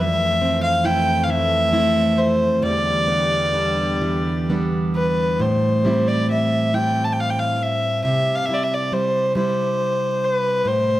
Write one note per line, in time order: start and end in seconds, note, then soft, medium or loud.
0.00 2.60 F2 medium
0.00 2.62 F2 medium
0.00 1.28 E3 medium
0.00 2.60 E3 medium
0.00 2.60 A3 medium
0.00 0.62 E5 medium
0.42 1.72 C4 medium
0.63 0.87 F5 medium
0.84 1.73 E4 medium
0.84 1.25 G5 medium
1.23 1.32 F5 medium
1.28 3.57 E3 medium
1.28 2.19 E5 medium
1.72 2.72 A3 medium
1.72 2.72 C4 medium
1.72 3.53 E4 medium
2.18 2.64 C5 medium
2.62 5.40 E2 medium
2.62 5.38 E2 medium
2.62 5.38 D3 medium
2.62 5.38 G3 medium
2.62 4.49 D5 medium
3.08 4.49 B3 medium
3.54 4.49 D4 medium
4.01 7.51 E3 medium
4.50 5.84 G3 soft
4.50 5.50 B3 soft
4.50 5.50 D4 soft
4.95 5.43 B4 medium
5.39 8.05 A2 medium
5.39 6.09 C5 medium
5.85 6.29 G3 soft
5.85 6.73 C4 soft
5.85 6.74 E4 medium
6.08 6.29 D5 medium
6.29 6.73 G3 soft
6.29 6.76 E5 medium
6.73 8.48 G3 soft
6.73 10.24 C4 soft
6.73 8.49 E4 soft
6.73 7.06 G5 medium
7.04 7.14 A5 medium
7.13 7.22 G5 medium
7.20 7.32 F5 medium
7.30 7.41 G5 medium
7.39 7.64 F5 medium
7.63 8.04 E5 medium
8.04 10.65 C3 medium
8.04 8.37 E5 medium
8.35 8.47 F5 medium
8.45 8.91 G3 soft
8.45 8.55 E5 medium
8.50 9.36 E4 medium
8.54 8.65 D5 medium
8.63 8.75 E5 medium
8.74 8.95 D5 medium
8.92 9.34 G3 soft
8.92 9.36 C5 medium
9.35 10.74 G3 medium
9.35 11.00 E4 soft
9.35 10.25 C5 medium
10.24 10.69 B4 medium
10.65 11.00 A2 medium
10.65 11.00 C3 medium
10.65 11.00 A3 medium
10.65 11.00 C5 medium